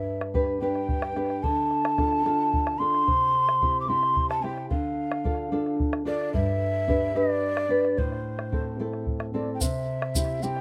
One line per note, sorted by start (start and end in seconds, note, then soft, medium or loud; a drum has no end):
0.00 1.40 G2 medium
0.00 0.30 E5 medium
0.21 bombo rim soft
0.34 0.61 D4 soft
0.34 0.61 G4 soft
0.34 0.61 B4 medium
0.34 bombo low medium
0.61 1.15 D4 soft
0.61 1.15 G4 soft
0.61 1.15 B4 medium
0.61 1.44 G5 medium
0.75 bombo rim soft
0.89 bombo low medium
1.02 bombo rim medium
1.16 1.43 D4 soft
1.16 1.43 G4 soft
1.16 1.43 B4 medium
1.16 bombo rim soft
1.30 bombo rim soft
1.43 3.03 D3 medium
1.43 2.80 A5 loud
1.43 bombo low medium
1.71 bombo rim soft
1.85 bombo rim medium
1.98 2.24 D4 soft
1.98 2.25 F4 soft
1.98 2.25 A4 soft
1.98 bombo rim soft
1.98 bombo low medium
2.12 bombo rim soft
2.25 2.78 D4 soft
2.25 2.78 F4 soft
2.25 2.79 A4 medium
2.25 bombo rim soft
2.54 bombo low medium
2.67 bombo rim soft
2.79 3.06 D4 soft
2.79 3.07 F4 soft
2.79 3.07 A4 medium
2.79 3.80 C6 loud
2.94 bombo rim soft
3.07 4.67 C3 medium
3.07 bombo low medium
3.49 bombo rim soft
3.62 3.87 C4 soft
3.62 3.88 E4 soft
3.62 3.88 G4 soft
3.62 bombo low medium
3.80 3.90 D6 medium
3.88 4.42 C4 soft
3.88 4.42 E4 soft
3.88 4.42 G4 medium
3.88 4.29 C6 medium
4.03 bombo rim soft
4.16 bombo low medium
4.29 4.44 A5 medium
4.29 bombo rim soft
4.43 4.70 C4 soft
4.43 4.70 E4 soft
4.43 4.70 G4 medium
4.43 4.69 G5 medium
4.43 bombo rim soft
4.58 bombo rim soft
4.70 6.30 D3 medium
4.70 5.75 F5 medium
4.70 bombo low medium
5.12 bombo rim soft
5.24 5.51 D4 soft
5.24 5.51 F4 soft
5.24 5.52 A4 soft
5.24 bombo low medium
5.52 6.04 D4 medium
5.52 6.05 F4 soft
5.52 6.05 A4 medium
5.66 bombo rim soft
5.80 bombo low medium
5.93 bombo rim soft
6.05 6.33 D4 medium
6.05 6.33 F4 soft
6.05 6.33 A4 medium
6.05 6.32 D5 loud
6.05 bombo rim soft
6.21 bombo rim soft
6.33 7.93 G2 medium
6.33 7.18 E5 loud
6.33 bombo low medium
6.88 7.14 D4 soft
6.88 7.14 G4 soft
6.88 7.14 B4 medium
6.88 bombo low medium
7.15 7.68 D4 soft
7.15 7.68 G4 soft
7.15 7.69 B4 medium
7.15 8.00 D5 loud
7.30 bombo rim soft
7.57 bombo rim medium
7.69 7.96 D4 soft
7.69 7.96 G4 soft
7.69 7.97 B4 medium
7.69 bombo rim soft
7.85 bombo rim soft
7.97 9.57 A2 medium
7.97 9.07 C5 medium
7.97 bombo low medium
8.12 bombo rim soft
8.39 bombo rim soft
8.52 8.78 C4 soft
8.52 8.79 E4 soft
8.52 8.79 A4 soft
8.52 bombo low medium
8.79 9.32 C4 medium
8.79 9.32 E4 soft
8.79 9.33 A4 soft
8.93 bombo rim soft
9.07 bombo low medium
9.20 bombo rim soft
9.34 9.60 C4 soft
9.34 9.60 E4 soft
9.34 9.61 A4 soft
9.34 9.53 D5 medium
9.54 9.63 G5 medium
9.61 10.61 C3 medium
9.61 10.44 E5 medium
9.61 bombo low medium
9.61 shaker medium
10.02 bombo rim medium
10.15 10.42 C4 soft
10.15 10.42 E4 soft
10.15 10.43 G4 soft
10.15 bombo low medium
10.15 shaker medium
10.43 10.61 C4 soft
10.43 10.61 E4 soft
10.43 10.61 G4 medium
10.43 10.61 G5 loud
10.43 shaker soft
10.56 bombo rim soft